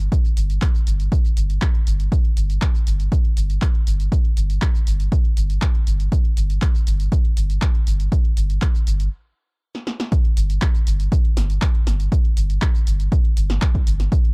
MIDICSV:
0, 0, Header, 1, 3, 480
1, 0, Start_track
1, 0, Tempo, 500000
1, 114, Time_signature, 4, 2, 24, 8
1, 13764, End_track
2, 0, Start_track
2, 0, Title_t, "Sub bass"
2, 0, Program_c, 0, 38
2, 354, Note_on_c, 0, 31, 99
2, 558, Note_off_c, 0, 31, 0
2, 834, Note_on_c, 0, 31, 88
2, 1038, Note_off_c, 0, 31, 0
2, 1314, Note_on_c, 0, 31, 84
2, 1518, Note_off_c, 0, 31, 0
2, 1794, Note_on_c, 0, 31, 92
2, 1998, Note_off_c, 0, 31, 0
2, 2274, Note_on_c, 0, 31, 91
2, 2478, Note_off_c, 0, 31, 0
2, 2754, Note_on_c, 0, 31, 89
2, 2958, Note_off_c, 0, 31, 0
2, 3234, Note_on_c, 0, 31, 82
2, 3438, Note_off_c, 0, 31, 0
2, 3714, Note_on_c, 0, 31, 85
2, 3918, Note_off_c, 0, 31, 0
2, 4195, Note_on_c, 0, 31, 100
2, 4398, Note_off_c, 0, 31, 0
2, 4675, Note_on_c, 0, 31, 90
2, 4879, Note_off_c, 0, 31, 0
2, 5155, Note_on_c, 0, 31, 89
2, 5358, Note_off_c, 0, 31, 0
2, 5635, Note_on_c, 0, 31, 93
2, 5839, Note_off_c, 0, 31, 0
2, 6115, Note_on_c, 0, 31, 97
2, 6318, Note_off_c, 0, 31, 0
2, 6595, Note_on_c, 0, 31, 95
2, 6798, Note_off_c, 0, 31, 0
2, 7075, Note_on_c, 0, 31, 83
2, 7279, Note_off_c, 0, 31, 0
2, 7554, Note_on_c, 0, 31, 89
2, 7758, Note_off_c, 0, 31, 0
2, 8034, Note_on_c, 0, 31, 96
2, 8238, Note_off_c, 0, 31, 0
2, 8514, Note_on_c, 0, 31, 90
2, 8718, Note_off_c, 0, 31, 0
2, 9954, Note_on_c, 0, 31, 98
2, 10158, Note_off_c, 0, 31, 0
2, 10434, Note_on_c, 0, 31, 87
2, 10638, Note_off_c, 0, 31, 0
2, 10915, Note_on_c, 0, 31, 89
2, 11118, Note_off_c, 0, 31, 0
2, 11394, Note_on_c, 0, 31, 89
2, 11598, Note_off_c, 0, 31, 0
2, 11875, Note_on_c, 0, 31, 99
2, 12078, Note_off_c, 0, 31, 0
2, 12355, Note_on_c, 0, 31, 87
2, 12558, Note_off_c, 0, 31, 0
2, 12834, Note_on_c, 0, 31, 93
2, 13038, Note_off_c, 0, 31, 0
2, 13314, Note_on_c, 0, 31, 93
2, 13518, Note_off_c, 0, 31, 0
2, 13764, End_track
3, 0, Start_track
3, 0, Title_t, "Drums"
3, 6, Note_on_c, 9, 82, 31
3, 102, Note_off_c, 9, 82, 0
3, 114, Note_on_c, 9, 36, 114
3, 115, Note_on_c, 9, 42, 47
3, 122, Note_on_c, 9, 82, 43
3, 210, Note_off_c, 9, 36, 0
3, 211, Note_off_c, 9, 42, 0
3, 218, Note_off_c, 9, 82, 0
3, 238, Note_on_c, 9, 42, 24
3, 246, Note_on_c, 9, 82, 28
3, 334, Note_off_c, 9, 42, 0
3, 342, Note_off_c, 9, 82, 0
3, 354, Note_on_c, 9, 46, 101
3, 362, Note_on_c, 9, 82, 66
3, 450, Note_off_c, 9, 46, 0
3, 458, Note_off_c, 9, 82, 0
3, 478, Note_on_c, 9, 42, 48
3, 486, Note_on_c, 9, 82, 31
3, 574, Note_off_c, 9, 42, 0
3, 582, Note_off_c, 9, 82, 0
3, 593, Note_on_c, 9, 39, 114
3, 594, Note_on_c, 9, 36, 113
3, 594, Note_on_c, 9, 42, 48
3, 602, Note_on_c, 9, 82, 42
3, 689, Note_off_c, 9, 39, 0
3, 690, Note_off_c, 9, 36, 0
3, 690, Note_off_c, 9, 42, 0
3, 698, Note_off_c, 9, 82, 0
3, 718, Note_on_c, 9, 42, 24
3, 726, Note_on_c, 9, 82, 28
3, 814, Note_off_c, 9, 42, 0
3, 822, Note_off_c, 9, 82, 0
3, 834, Note_on_c, 9, 46, 93
3, 842, Note_on_c, 9, 82, 73
3, 930, Note_off_c, 9, 46, 0
3, 938, Note_off_c, 9, 82, 0
3, 958, Note_on_c, 9, 42, 47
3, 965, Note_on_c, 9, 82, 32
3, 1054, Note_off_c, 9, 42, 0
3, 1061, Note_off_c, 9, 82, 0
3, 1074, Note_on_c, 9, 36, 120
3, 1074, Note_on_c, 9, 42, 46
3, 1082, Note_on_c, 9, 82, 40
3, 1170, Note_off_c, 9, 36, 0
3, 1170, Note_off_c, 9, 42, 0
3, 1178, Note_off_c, 9, 82, 0
3, 1198, Note_on_c, 9, 42, 24
3, 1205, Note_on_c, 9, 82, 29
3, 1294, Note_off_c, 9, 42, 0
3, 1301, Note_off_c, 9, 82, 0
3, 1314, Note_on_c, 9, 46, 101
3, 1321, Note_on_c, 9, 82, 71
3, 1410, Note_off_c, 9, 46, 0
3, 1417, Note_off_c, 9, 82, 0
3, 1438, Note_on_c, 9, 42, 49
3, 1446, Note_on_c, 9, 82, 32
3, 1534, Note_off_c, 9, 42, 0
3, 1542, Note_off_c, 9, 82, 0
3, 1552, Note_on_c, 9, 39, 107
3, 1554, Note_on_c, 9, 36, 117
3, 1554, Note_on_c, 9, 42, 46
3, 1562, Note_on_c, 9, 82, 38
3, 1648, Note_off_c, 9, 39, 0
3, 1650, Note_off_c, 9, 36, 0
3, 1650, Note_off_c, 9, 42, 0
3, 1658, Note_off_c, 9, 82, 0
3, 1678, Note_on_c, 9, 42, 24
3, 1774, Note_off_c, 9, 42, 0
3, 1794, Note_on_c, 9, 46, 92
3, 1802, Note_on_c, 9, 82, 74
3, 1890, Note_off_c, 9, 46, 0
3, 1898, Note_off_c, 9, 82, 0
3, 1918, Note_on_c, 9, 42, 49
3, 1926, Note_on_c, 9, 82, 31
3, 2014, Note_off_c, 9, 42, 0
3, 2022, Note_off_c, 9, 82, 0
3, 2034, Note_on_c, 9, 36, 112
3, 2034, Note_on_c, 9, 42, 48
3, 2042, Note_on_c, 9, 82, 41
3, 2130, Note_off_c, 9, 36, 0
3, 2130, Note_off_c, 9, 42, 0
3, 2138, Note_off_c, 9, 82, 0
3, 2158, Note_on_c, 9, 42, 24
3, 2254, Note_off_c, 9, 42, 0
3, 2274, Note_on_c, 9, 46, 98
3, 2282, Note_on_c, 9, 82, 75
3, 2370, Note_off_c, 9, 46, 0
3, 2378, Note_off_c, 9, 82, 0
3, 2398, Note_on_c, 9, 42, 48
3, 2405, Note_on_c, 9, 82, 33
3, 2494, Note_off_c, 9, 42, 0
3, 2501, Note_off_c, 9, 82, 0
3, 2513, Note_on_c, 9, 39, 105
3, 2514, Note_on_c, 9, 36, 109
3, 2514, Note_on_c, 9, 42, 47
3, 2522, Note_on_c, 9, 82, 40
3, 2609, Note_off_c, 9, 39, 0
3, 2610, Note_off_c, 9, 36, 0
3, 2610, Note_off_c, 9, 42, 0
3, 2618, Note_off_c, 9, 82, 0
3, 2638, Note_on_c, 9, 42, 25
3, 2646, Note_on_c, 9, 82, 29
3, 2734, Note_off_c, 9, 42, 0
3, 2742, Note_off_c, 9, 82, 0
3, 2754, Note_on_c, 9, 46, 90
3, 2762, Note_on_c, 9, 82, 77
3, 2850, Note_off_c, 9, 46, 0
3, 2858, Note_off_c, 9, 82, 0
3, 2878, Note_on_c, 9, 42, 47
3, 2885, Note_on_c, 9, 82, 33
3, 2974, Note_off_c, 9, 42, 0
3, 2981, Note_off_c, 9, 82, 0
3, 2994, Note_on_c, 9, 36, 115
3, 2994, Note_on_c, 9, 42, 48
3, 3002, Note_on_c, 9, 82, 41
3, 3090, Note_off_c, 9, 36, 0
3, 3090, Note_off_c, 9, 42, 0
3, 3098, Note_off_c, 9, 82, 0
3, 3118, Note_on_c, 9, 42, 24
3, 3214, Note_off_c, 9, 42, 0
3, 3234, Note_on_c, 9, 46, 95
3, 3242, Note_on_c, 9, 82, 74
3, 3330, Note_off_c, 9, 46, 0
3, 3338, Note_off_c, 9, 82, 0
3, 3358, Note_on_c, 9, 42, 50
3, 3366, Note_on_c, 9, 82, 33
3, 3454, Note_off_c, 9, 42, 0
3, 3462, Note_off_c, 9, 82, 0
3, 3473, Note_on_c, 9, 39, 104
3, 3474, Note_on_c, 9, 36, 111
3, 3475, Note_on_c, 9, 42, 46
3, 3482, Note_on_c, 9, 82, 43
3, 3569, Note_off_c, 9, 39, 0
3, 3570, Note_off_c, 9, 36, 0
3, 3571, Note_off_c, 9, 42, 0
3, 3578, Note_off_c, 9, 82, 0
3, 3599, Note_on_c, 9, 42, 23
3, 3695, Note_off_c, 9, 42, 0
3, 3715, Note_on_c, 9, 46, 90
3, 3722, Note_on_c, 9, 82, 75
3, 3811, Note_off_c, 9, 46, 0
3, 3818, Note_off_c, 9, 82, 0
3, 3839, Note_on_c, 9, 42, 49
3, 3846, Note_on_c, 9, 82, 34
3, 3935, Note_off_c, 9, 42, 0
3, 3942, Note_off_c, 9, 82, 0
3, 3954, Note_on_c, 9, 36, 106
3, 3955, Note_on_c, 9, 42, 48
3, 3962, Note_on_c, 9, 82, 45
3, 4050, Note_off_c, 9, 36, 0
3, 4051, Note_off_c, 9, 42, 0
3, 4058, Note_off_c, 9, 82, 0
3, 4078, Note_on_c, 9, 42, 26
3, 4174, Note_off_c, 9, 42, 0
3, 4195, Note_on_c, 9, 46, 92
3, 4202, Note_on_c, 9, 82, 75
3, 4291, Note_off_c, 9, 46, 0
3, 4298, Note_off_c, 9, 82, 0
3, 4318, Note_on_c, 9, 42, 51
3, 4326, Note_on_c, 9, 82, 32
3, 4414, Note_off_c, 9, 42, 0
3, 4422, Note_off_c, 9, 82, 0
3, 4433, Note_on_c, 9, 39, 109
3, 4434, Note_on_c, 9, 36, 109
3, 4435, Note_on_c, 9, 42, 50
3, 4442, Note_on_c, 9, 82, 45
3, 4529, Note_off_c, 9, 39, 0
3, 4530, Note_off_c, 9, 36, 0
3, 4531, Note_off_c, 9, 42, 0
3, 4538, Note_off_c, 9, 82, 0
3, 4559, Note_on_c, 9, 42, 25
3, 4566, Note_on_c, 9, 82, 30
3, 4655, Note_off_c, 9, 42, 0
3, 4662, Note_off_c, 9, 82, 0
3, 4674, Note_on_c, 9, 46, 90
3, 4682, Note_on_c, 9, 82, 82
3, 4770, Note_off_c, 9, 46, 0
3, 4778, Note_off_c, 9, 82, 0
3, 4799, Note_on_c, 9, 42, 52
3, 4806, Note_on_c, 9, 82, 35
3, 4895, Note_off_c, 9, 42, 0
3, 4902, Note_off_c, 9, 82, 0
3, 4915, Note_on_c, 9, 36, 115
3, 4915, Note_on_c, 9, 42, 51
3, 4922, Note_on_c, 9, 82, 42
3, 5011, Note_off_c, 9, 36, 0
3, 5011, Note_off_c, 9, 42, 0
3, 5018, Note_off_c, 9, 82, 0
3, 5038, Note_on_c, 9, 42, 25
3, 5134, Note_off_c, 9, 42, 0
3, 5155, Note_on_c, 9, 46, 97
3, 5162, Note_on_c, 9, 82, 76
3, 5251, Note_off_c, 9, 46, 0
3, 5258, Note_off_c, 9, 82, 0
3, 5278, Note_on_c, 9, 42, 52
3, 5286, Note_on_c, 9, 82, 33
3, 5374, Note_off_c, 9, 42, 0
3, 5382, Note_off_c, 9, 82, 0
3, 5393, Note_on_c, 9, 39, 100
3, 5395, Note_on_c, 9, 36, 108
3, 5395, Note_on_c, 9, 42, 50
3, 5402, Note_on_c, 9, 82, 43
3, 5489, Note_off_c, 9, 39, 0
3, 5491, Note_off_c, 9, 36, 0
3, 5491, Note_off_c, 9, 42, 0
3, 5498, Note_off_c, 9, 82, 0
3, 5518, Note_on_c, 9, 42, 26
3, 5614, Note_off_c, 9, 42, 0
3, 5635, Note_on_c, 9, 46, 84
3, 5642, Note_on_c, 9, 82, 76
3, 5731, Note_off_c, 9, 46, 0
3, 5738, Note_off_c, 9, 82, 0
3, 5759, Note_on_c, 9, 42, 49
3, 5767, Note_on_c, 9, 82, 34
3, 5855, Note_off_c, 9, 42, 0
3, 5863, Note_off_c, 9, 82, 0
3, 5875, Note_on_c, 9, 36, 102
3, 5875, Note_on_c, 9, 42, 52
3, 5882, Note_on_c, 9, 82, 46
3, 5971, Note_off_c, 9, 36, 0
3, 5971, Note_off_c, 9, 42, 0
3, 5978, Note_off_c, 9, 82, 0
3, 5999, Note_on_c, 9, 42, 25
3, 6095, Note_off_c, 9, 42, 0
3, 6115, Note_on_c, 9, 46, 94
3, 6123, Note_on_c, 9, 82, 76
3, 6211, Note_off_c, 9, 46, 0
3, 6219, Note_off_c, 9, 82, 0
3, 6239, Note_on_c, 9, 42, 52
3, 6246, Note_on_c, 9, 82, 35
3, 6335, Note_off_c, 9, 42, 0
3, 6342, Note_off_c, 9, 82, 0
3, 6353, Note_on_c, 9, 39, 110
3, 6355, Note_on_c, 9, 36, 112
3, 6355, Note_on_c, 9, 42, 51
3, 6362, Note_on_c, 9, 82, 45
3, 6449, Note_off_c, 9, 39, 0
3, 6451, Note_off_c, 9, 36, 0
3, 6451, Note_off_c, 9, 42, 0
3, 6458, Note_off_c, 9, 82, 0
3, 6479, Note_on_c, 9, 42, 27
3, 6486, Note_on_c, 9, 82, 33
3, 6575, Note_off_c, 9, 42, 0
3, 6582, Note_off_c, 9, 82, 0
3, 6595, Note_on_c, 9, 46, 90
3, 6602, Note_on_c, 9, 82, 86
3, 6691, Note_off_c, 9, 46, 0
3, 6698, Note_off_c, 9, 82, 0
3, 6718, Note_on_c, 9, 42, 55
3, 6726, Note_on_c, 9, 82, 35
3, 6814, Note_off_c, 9, 42, 0
3, 6822, Note_off_c, 9, 82, 0
3, 6835, Note_on_c, 9, 36, 108
3, 6835, Note_on_c, 9, 42, 51
3, 6842, Note_on_c, 9, 82, 46
3, 6931, Note_off_c, 9, 36, 0
3, 6931, Note_off_c, 9, 42, 0
3, 6938, Note_off_c, 9, 82, 0
3, 6959, Note_on_c, 9, 42, 26
3, 7055, Note_off_c, 9, 42, 0
3, 7075, Note_on_c, 9, 46, 100
3, 7082, Note_on_c, 9, 82, 78
3, 7171, Note_off_c, 9, 46, 0
3, 7178, Note_off_c, 9, 82, 0
3, 7198, Note_on_c, 9, 42, 53
3, 7206, Note_on_c, 9, 82, 34
3, 7294, Note_off_c, 9, 42, 0
3, 7302, Note_off_c, 9, 82, 0
3, 7313, Note_on_c, 9, 39, 103
3, 7315, Note_on_c, 9, 36, 111
3, 7315, Note_on_c, 9, 42, 50
3, 7322, Note_on_c, 9, 82, 43
3, 7409, Note_off_c, 9, 39, 0
3, 7411, Note_off_c, 9, 36, 0
3, 7411, Note_off_c, 9, 42, 0
3, 7418, Note_off_c, 9, 82, 0
3, 7438, Note_on_c, 9, 42, 26
3, 7534, Note_off_c, 9, 42, 0
3, 7555, Note_on_c, 9, 46, 86
3, 7562, Note_on_c, 9, 82, 80
3, 7651, Note_off_c, 9, 46, 0
3, 7658, Note_off_c, 9, 82, 0
3, 7679, Note_on_c, 9, 42, 54
3, 7686, Note_on_c, 9, 82, 34
3, 7775, Note_off_c, 9, 42, 0
3, 7782, Note_off_c, 9, 82, 0
3, 7795, Note_on_c, 9, 36, 109
3, 7795, Note_on_c, 9, 42, 53
3, 7802, Note_on_c, 9, 82, 45
3, 7891, Note_off_c, 9, 36, 0
3, 7891, Note_off_c, 9, 42, 0
3, 7898, Note_off_c, 9, 82, 0
3, 7919, Note_on_c, 9, 42, 26
3, 8015, Note_off_c, 9, 42, 0
3, 8035, Note_on_c, 9, 46, 97
3, 8042, Note_on_c, 9, 82, 76
3, 8131, Note_off_c, 9, 46, 0
3, 8138, Note_off_c, 9, 82, 0
3, 8159, Note_on_c, 9, 42, 52
3, 8166, Note_on_c, 9, 82, 34
3, 8255, Note_off_c, 9, 42, 0
3, 8262, Note_off_c, 9, 82, 0
3, 8273, Note_on_c, 9, 39, 108
3, 8275, Note_on_c, 9, 36, 106
3, 8275, Note_on_c, 9, 42, 50
3, 8282, Note_on_c, 9, 82, 43
3, 8369, Note_off_c, 9, 39, 0
3, 8371, Note_off_c, 9, 36, 0
3, 8371, Note_off_c, 9, 42, 0
3, 8378, Note_off_c, 9, 82, 0
3, 8398, Note_on_c, 9, 42, 27
3, 8406, Note_on_c, 9, 82, 32
3, 8494, Note_off_c, 9, 42, 0
3, 8502, Note_off_c, 9, 82, 0
3, 8515, Note_on_c, 9, 46, 93
3, 8522, Note_on_c, 9, 82, 82
3, 8611, Note_off_c, 9, 46, 0
3, 8618, Note_off_c, 9, 82, 0
3, 8639, Note_on_c, 9, 42, 58
3, 8646, Note_on_c, 9, 82, 35
3, 8735, Note_off_c, 9, 42, 0
3, 8742, Note_off_c, 9, 82, 0
3, 9358, Note_on_c, 9, 38, 51
3, 9454, Note_off_c, 9, 38, 0
3, 9474, Note_on_c, 9, 38, 78
3, 9570, Note_off_c, 9, 38, 0
3, 9598, Note_on_c, 9, 38, 77
3, 9694, Note_off_c, 9, 38, 0
3, 9714, Note_on_c, 9, 42, 55
3, 9715, Note_on_c, 9, 36, 118
3, 9722, Note_on_c, 9, 82, 44
3, 9810, Note_off_c, 9, 42, 0
3, 9811, Note_off_c, 9, 36, 0
3, 9818, Note_off_c, 9, 82, 0
3, 9838, Note_on_c, 9, 42, 28
3, 9934, Note_off_c, 9, 42, 0
3, 9955, Note_on_c, 9, 46, 101
3, 9962, Note_on_c, 9, 82, 78
3, 10051, Note_off_c, 9, 46, 0
3, 10058, Note_off_c, 9, 82, 0
3, 10078, Note_on_c, 9, 42, 55
3, 10086, Note_on_c, 9, 82, 33
3, 10174, Note_off_c, 9, 42, 0
3, 10182, Note_off_c, 9, 82, 0
3, 10193, Note_on_c, 9, 39, 116
3, 10194, Note_on_c, 9, 36, 117
3, 10194, Note_on_c, 9, 42, 54
3, 10202, Note_on_c, 9, 82, 41
3, 10289, Note_off_c, 9, 39, 0
3, 10290, Note_off_c, 9, 36, 0
3, 10290, Note_off_c, 9, 42, 0
3, 10298, Note_off_c, 9, 82, 0
3, 10318, Note_on_c, 9, 42, 27
3, 10325, Note_on_c, 9, 82, 30
3, 10414, Note_off_c, 9, 42, 0
3, 10421, Note_off_c, 9, 82, 0
3, 10434, Note_on_c, 9, 46, 97
3, 10442, Note_on_c, 9, 82, 82
3, 10530, Note_off_c, 9, 46, 0
3, 10538, Note_off_c, 9, 82, 0
3, 10558, Note_on_c, 9, 42, 56
3, 10566, Note_on_c, 9, 82, 34
3, 10654, Note_off_c, 9, 42, 0
3, 10662, Note_off_c, 9, 82, 0
3, 10674, Note_on_c, 9, 36, 118
3, 10674, Note_on_c, 9, 42, 55
3, 10682, Note_on_c, 9, 82, 44
3, 10770, Note_off_c, 9, 36, 0
3, 10770, Note_off_c, 9, 42, 0
3, 10778, Note_off_c, 9, 82, 0
3, 10798, Note_on_c, 9, 42, 29
3, 10894, Note_off_c, 9, 42, 0
3, 10915, Note_on_c, 9, 38, 76
3, 10915, Note_on_c, 9, 46, 105
3, 10922, Note_on_c, 9, 82, 74
3, 11011, Note_off_c, 9, 38, 0
3, 11011, Note_off_c, 9, 46, 0
3, 11018, Note_off_c, 9, 82, 0
3, 11038, Note_on_c, 9, 42, 54
3, 11046, Note_on_c, 9, 82, 32
3, 11134, Note_off_c, 9, 42, 0
3, 11142, Note_off_c, 9, 82, 0
3, 11153, Note_on_c, 9, 39, 118
3, 11154, Note_on_c, 9, 36, 122
3, 11154, Note_on_c, 9, 42, 53
3, 11162, Note_on_c, 9, 82, 43
3, 11249, Note_off_c, 9, 39, 0
3, 11250, Note_off_c, 9, 36, 0
3, 11250, Note_off_c, 9, 42, 0
3, 11258, Note_off_c, 9, 82, 0
3, 11278, Note_on_c, 9, 42, 26
3, 11374, Note_off_c, 9, 42, 0
3, 11394, Note_on_c, 9, 38, 59
3, 11394, Note_on_c, 9, 46, 92
3, 11402, Note_on_c, 9, 82, 76
3, 11490, Note_off_c, 9, 38, 0
3, 11490, Note_off_c, 9, 46, 0
3, 11498, Note_off_c, 9, 82, 0
3, 11518, Note_on_c, 9, 42, 55
3, 11526, Note_on_c, 9, 82, 33
3, 11614, Note_off_c, 9, 42, 0
3, 11622, Note_off_c, 9, 82, 0
3, 11634, Note_on_c, 9, 36, 121
3, 11634, Note_on_c, 9, 42, 53
3, 11642, Note_on_c, 9, 82, 44
3, 11730, Note_off_c, 9, 36, 0
3, 11730, Note_off_c, 9, 42, 0
3, 11738, Note_off_c, 9, 82, 0
3, 11758, Note_on_c, 9, 42, 27
3, 11854, Note_off_c, 9, 42, 0
3, 11874, Note_on_c, 9, 46, 102
3, 11882, Note_on_c, 9, 82, 76
3, 11970, Note_off_c, 9, 46, 0
3, 11978, Note_off_c, 9, 82, 0
3, 11998, Note_on_c, 9, 42, 55
3, 12006, Note_on_c, 9, 82, 33
3, 12094, Note_off_c, 9, 42, 0
3, 12102, Note_off_c, 9, 82, 0
3, 12113, Note_on_c, 9, 39, 118
3, 12114, Note_on_c, 9, 36, 119
3, 12115, Note_on_c, 9, 42, 52
3, 12122, Note_on_c, 9, 82, 43
3, 12209, Note_off_c, 9, 39, 0
3, 12210, Note_off_c, 9, 36, 0
3, 12211, Note_off_c, 9, 42, 0
3, 12218, Note_off_c, 9, 82, 0
3, 12239, Note_on_c, 9, 42, 28
3, 12246, Note_on_c, 9, 82, 31
3, 12335, Note_off_c, 9, 42, 0
3, 12342, Note_off_c, 9, 82, 0
3, 12355, Note_on_c, 9, 46, 98
3, 12362, Note_on_c, 9, 82, 81
3, 12451, Note_off_c, 9, 46, 0
3, 12458, Note_off_c, 9, 82, 0
3, 12478, Note_on_c, 9, 42, 55
3, 12486, Note_on_c, 9, 82, 33
3, 12574, Note_off_c, 9, 42, 0
3, 12582, Note_off_c, 9, 82, 0
3, 12594, Note_on_c, 9, 36, 123
3, 12594, Note_on_c, 9, 42, 54
3, 12602, Note_on_c, 9, 82, 39
3, 12690, Note_off_c, 9, 36, 0
3, 12690, Note_off_c, 9, 42, 0
3, 12698, Note_off_c, 9, 82, 0
3, 12718, Note_on_c, 9, 42, 27
3, 12814, Note_off_c, 9, 42, 0
3, 12834, Note_on_c, 9, 46, 105
3, 12842, Note_on_c, 9, 82, 72
3, 12930, Note_off_c, 9, 46, 0
3, 12938, Note_off_c, 9, 82, 0
3, 12958, Note_on_c, 9, 38, 75
3, 12958, Note_on_c, 9, 42, 54
3, 12966, Note_on_c, 9, 82, 32
3, 13054, Note_off_c, 9, 38, 0
3, 13054, Note_off_c, 9, 42, 0
3, 13062, Note_off_c, 9, 82, 0
3, 13073, Note_on_c, 9, 39, 117
3, 13074, Note_on_c, 9, 36, 122
3, 13074, Note_on_c, 9, 42, 51
3, 13082, Note_on_c, 9, 82, 40
3, 13169, Note_off_c, 9, 39, 0
3, 13170, Note_off_c, 9, 36, 0
3, 13170, Note_off_c, 9, 42, 0
3, 13178, Note_off_c, 9, 82, 0
3, 13198, Note_on_c, 9, 36, 65
3, 13199, Note_on_c, 9, 42, 26
3, 13294, Note_off_c, 9, 36, 0
3, 13295, Note_off_c, 9, 42, 0
3, 13314, Note_on_c, 9, 46, 97
3, 13322, Note_on_c, 9, 82, 76
3, 13410, Note_off_c, 9, 46, 0
3, 13418, Note_off_c, 9, 82, 0
3, 13438, Note_on_c, 9, 38, 36
3, 13438, Note_on_c, 9, 42, 54
3, 13446, Note_on_c, 9, 82, 33
3, 13534, Note_off_c, 9, 38, 0
3, 13534, Note_off_c, 9, 42, 0
3, 13542, Note_off_c, 9, 82, 0
3, 13554, Note_on_c, 9, 36, 120
3, 13554, Note_on_c, 9, 42, 50
3, 13562, Note_on_c, 9, 82, 42
3, 13650, Note_off_c, 9, 36, 0
3, 13650, Note_off_c, 9, 42, 0
3, 13658, Note_off_c, 9, 82, 0
3, 13678, Note_on_c, 9, 42, 25
3, 13764, Note_off_c, 9, 42, 0
3, 13764, End_track
0, 0, End_of_file